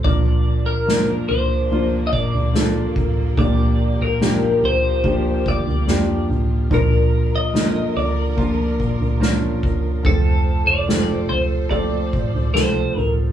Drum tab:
SD |----o-------o---|----o-------o---|----o-------o---|----o-------o---|
FT |o-----o-o--o--o-|o-----o-o--o--o-|o-----o-o--o--o-|o-----o-o--o--o-|
BD |o---------o---o-|o-------o-o-----|o-------o-o---o-|o-------o-o-----|